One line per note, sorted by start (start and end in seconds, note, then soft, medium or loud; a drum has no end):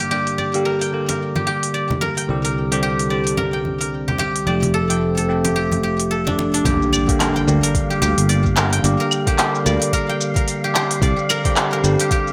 0.00 2.27 G1 medium
0.00 0.10 D3 medium
0.00 0.11 G3 medium
0.00 0.12 A#3 medium
0.00 0.11 G4 medium
0.00 0.12 G4 medium
0.00 0.65 A#4 medium
0.00 0.38 D5 medium
0.00 0.81 G5 medium
0.10 0.50 D3 medium
0.10 0.51 G3 medium
0.10 0.51 A#3 medium
0.10 1.35 G4 medium
0.10 0.51 G4 medium
0.27 open hi-hat soft
0.38 1.74 D5 medium
0.38 high conga soft
0.53 0.90 D3 medium
0.53 0.90 G3 medium
0.53 0.90 A#3 medium
0.53 0.91 G4 medium
0.53 open hi-hat soft
0.65 1.08 A#4 medium
0.81 2.17 G5 medium
0.81 open hi-hat soft
0.92 1.05 D3 medium
0.92 1.05 G3 medium
0.92 1.05 A#3 medium
0.92 1.06 G4 medium
1.08 2.01 A#4 medium
1.08 open hi-hat soft
1.08 muted conga medium
1.36 1.46 G4 medium
1.36 high conga medium
1.47 2.71 G4 medium
1.63 open hi-hat soft
1.74 3.10 D5 medium
1.90 muted conga medium
1.90 low conga medium
2.01 2.44 A#4 medium
2.01 muted conga medium
2.17 3.53 G5 medium
2.17 open hi-hat medium
2.28 4.45 C2 medium
2.28 2.68 D3 medium
2.28 2.68 G3 medium
2.28 2.69 C4 medium
2.28 2.69 G4 medium
2.44 3.37 A#4 medium
2.44 open hi-hat soft
2.71 3.08 D3 medium
2.71 3.08 G3 medium
2.71 3.08 C4 medium
2.71 2.82 G4 medium
2.71 3.09 G4 medium
2.71 open hi-hat medium
2.83 4.07 G4 medium
2.99 open hi-hat soft
3.09 3.22 D3 medium
3.09 3.23 G3 medium
3.09 3.23 C4 medium
3.09 3.23 G4 medium
3.09 4.46 D5 medium
3.27 open hi-hat medium
3.37 3.80 A#4 medium
3.37 muted conga soft
3.37 high conga medium
3.53 4.89 G5 medium
3.65 high conga soft
3.81 4.80 A#4 medium
3.81 open hi-hat soft
4.08 4.19 G4 medium
4.08 low conga medium
4.18 5.44 G4 medium
4.18 muted conga medium
4.36 open hi-hat soft
4.46 6.63 F1 medium
4.46 4.86 F3 medium
4.46 4.86 A3 medium
4.46 4.87 C4 medium
4.46 4.87 G4 medium
4.46 6.31 D5 medium
4.62 open hi-hat soft
4.62 low conga medium
4.74 5.17 A4 loud
4.74 high conga soft
4.89 5.26 F3 medium
4.89 5.26 A3 medium
4.89 5.26 C4 medium
4.89 5.26 G4 medium
4.89 6.45 G5 medium
4.89 open hi-hat medium
5.17 6.10 A4 medium
5.17 open hi-hat soft
5.17 muted conga soft
5.28 5.41 F3 medium
5.28 5.41 A3 medium
5.28 5.41 C4 medium
5.28 5.42 G4 medium
5.44 5.55 G4 medium
5.44 open hi-hat medium
5.44 muted conga medium
5.56 5.83 G4 medium
5.72 open hi-hat soft
5.72 high conga medium
5.83 6.65 G4 medium
6.00 open hi-hat soft
6.11 7.26 A4 medium
6.27 6.53 D4 medium
6.27 muted conga medium
6.27 high conga medium
6.27 low conga medium
6.39 muted conga medium
6.54 9.34 D4 medium
6.54 open hi-hat medium
6.65 6.76 G1 loud
6.65 7.05 D3 medium
6.65 7.05 G3 medium
6.65 7.05 A#3 medium
6.65 7.90 G4 loud
6.65 7.05 G4 medium
6.65 12.33 F5 medium
6.65 kick loud
6.65 open hi-hat soft
6.65 impact medium
6.65 shaker soft
6.82 shaker soft
6.93 8.29 D5 medium
6.93 claves medium
6.93 shaker medium
7.07 7.44 D3 medium
7.07 7.44 G3 medium
7.07 7.45 A#3 medium
7.07 7.45 G4 loud
7.07 kick loud
7.07 open hi-hat medium
7.07 shaker soft
7.20 7.63 A#4 medium
7.20 clap medium
7.20 open hi-hat soft
7.20 claves medium
7.20 shaker soft
7.36 8.72 G5 medium
7.36 shaker soft
7.46 7.58 D2 medium
7.46 7.59 D3 medium
7.46 7.59 G3 medium
7.46 7.60 A#3 medium
7.46 7.60 G4 medium
7.46 shaker medium
7.63 8.56 A#4 medium
7.63 open hi-hat medium
7.63 shaker soft
7.74 kick loud
7.74 open hi-hat soft
7.74 shaker soft
7.90 8.01 G4 medium
7.90 shaker soft
8.02 8.13 D2 loud
8.02 9.27 G4 loud
8.02 shaker medium
8.18 8.78 G1 medium
8.18 open hi-hat medium
8.18 shaker soft
8.29 9.65 D5 medium
8.29 open hi-hat soft
8.29 shaker soft
8.45 kick medium
8.45 shaker soft
8.56 9.00 A#4 loud
8.56 clap medium
8.56 shaker medium
8.73 10.09 G5 medium
8.73 open hi-hat medium
8.73 shaker soft
8.83 8.95 G1 medium
8.83 9.23 D3 medium
8.83 9.23 G3 medium
8.83 9.24 A#3 medium
8.83 9.24 G4 loud
8.83 open hi-hat soft
8.83 shaker soft
9.00 9.93 A#4 medium
9.00 shaker soft
9.11 claves medium
9.11 shaker medium
9.26 9.62 D3 medium
9.26 9.63 G3 medium
9.26 9.63 A#3 medium
9.26 9.38 G4 medium
9.26 9.63 G4 loud
9.26 kick loud
9.26 open hi-hat medium
9.26 shaker soft
9.38 10.64 G4 loud
9.38 clap medium
9.38 open hi-hat soft
9.38 shaker medium
9.55 shaker soft
9.64 9.77 D2 medium
9.64 9.77 D3 medium
9.64 9.77 G3 medium
9.64 9.78 A#3 medium
9.64 9.78 G4 medium
9.64 11.02 D5 medium
9.64 shaker medium
9.82 open hi-hat medium
9.82 shaker soft
9.93 10.36 A#4 loud
9.93 kick medium
9.93 open hi-hat soft
9.93 shaker soft
10.09 11.45 G5 medium
10.09 shaker soft
10.21 shaker medium
10.36 11.29 A#4 medium
10.36 kick loud
10.36 open hi-hat medium
10.36 shaker soft
10.48 open hi-hat soft
10.48 shaker soft
10.64 10.75 G4 medium
10.64 shaker soft
10.75 12.00 G4 loud
10.75 clap medium
10.75 shaker medium
10.91 open hi-hat medium
10.91 shaker soft
11.01 11.13 C2 medium
11.01 11.41 D3 medium
11.01 11.41 G3 medium
11.01 11.42 C4 medium
11.01 11.42 G4 loud
11.01 12.33 D5 medium
11.01 kick loud
11.01 open hi-hat soft
11.01 shaker soft
11.19 shaker soft
11.29 11.72 A#4 loud
11.29 claves medium
11.29 shaker medium
11.45 11.81 D3 medium
11.45 11.81 G3 medium
11.45 11.81 C4 medium
11.45 11.82 G4 loud
11.45 12.33 G5 medium
11.45 kick loud
11.45 open hi-hat medium
11.45 shaker soft
11.56 clap medium
11.56 open hi-hat soft
11.56 claves medium
11.56 shaker medium
11.73 12.33 A#4 medium
11.73 shaker soft
11.83 11.95 G1 medium
11.83 11.96 D3 medium
11.83 11.96 G3 medium
11.83 11.96 C4 medium
11.83 11.97 G4 medium
11.83 shaker medium
12.00 12.11 G4 medium
12.00 open hi-hat medium
12.00 shaker soft
12.11 12.33 G4 loud
12.11 kick loud
12.11 open hi-hat soft
12.11 shaker medium
12.28 shaker soft